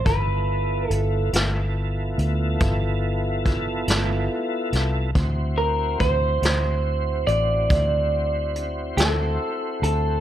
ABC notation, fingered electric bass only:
X:1
M:12/8
L:1/8
Q:3/8=47
K:Gmix
V:1 name="Fingered electric bass" clef=bass
G,,,2 G,,, G,,,2 D,, G,,,3 G,,, z C,, | D,,2 D,, D,,2 A,,, D,,3 D,, z D,, |]